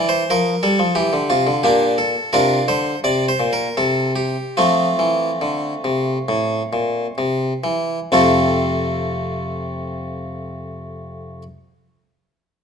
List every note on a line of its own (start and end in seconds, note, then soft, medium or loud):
0.00 0.21 E3 medium
0.09 0.30 C5 medium
0.30 0.54 F3 medium
0.30 0.63 A#4 medium
0.63 0.78 G3 medium
0.63 0.90 A4 medium
0.79 0.95 F3 medium
0.95 1.11 E3 medium
0.95 1.28 G4 medium
1.13 1.28 D3 medium
1.30 1.45 C3 medium
1.30 1.63 F4 medium
1.47 1.62 D3 medium
1.63 2.14 A#2 medium
1.63 1.96 A#3 medium
1.63 1.96 D4 medium
1.63 1.93 G4 medium
1.98 2.33 A4 medium
2.33 2.58 C3 medium
2.33 2.66 D4 medium
2.33 2.66 F4 medium
2.33 2.62 A#4 medium
2.68 2.93 D3 soft
2.68 2.98 C5 medium
3.04 3.30 C3 medium
3.04 3.24 D5 medium
3.29 3.52 C5 medium
3.40 3.67 A#2 soft
3.53 3.74 A#4 medium
3.77 4.35 C3 medium
3.77 4.11 A4 medium
4.16 4.57 G4 medium
4.57 4.87 F3 soft
4.57 7.14 A3 soft
4.57 7.14 C4 soft
4.57 6.79 F4 medium
4.99 5.29 E3 soft
5.41 5.72 D3 soft
5.84 6.16 C3 soft
6.28 6.61 A2 soft
6.73 7.05 A#2 soft
7.18 7.51 C3 soft
7.64 7.98 E3 soft
8.12 11.42 F2 medium
8.12 11.42 C3 soft
8.12 11.42 A3 soft
8.12 11.42 C4 soft
8.12 11.43 F4 soft
8.12 11.43 A4 soft